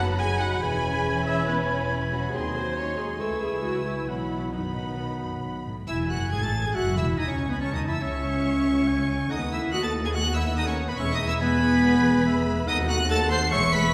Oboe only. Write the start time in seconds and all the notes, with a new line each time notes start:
Already playing: F#5
0.63 G#5
2.35 G#5
3.21 G#5
4.09 F#5
4.54 F#5
5.89 G#5
6.75 E5
7.18 G#5
7.61 A5
8.03 E5
8.88 G#5
9.31 F#5
9.73 D#5
10.15 F#5
10.99 E5
11.41 G#5
12.26 E5
12.68 F#5
13.10 F#5
13.52 E5